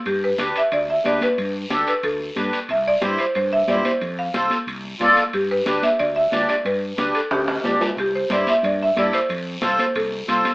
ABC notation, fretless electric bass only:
X:1
M:4/4
L:1/8
Q:1/4=182
K:C
V:1 name="Fretless electric bass" clef=bass
G,,2 D,, z D,,2 D,, z | G,,2 D,, z D,,2 G,, z | C,,2 G,, z G,,2 G,, z | F,,2 C,, z C,,2 C,, z |
G,,2 D,, z D,,2 D,, z | G,,2 D,, z D,,2 D,, z | C,,2 G,, z G,,2 G,, z | F,,2 C,, z C,,2 C,, z |]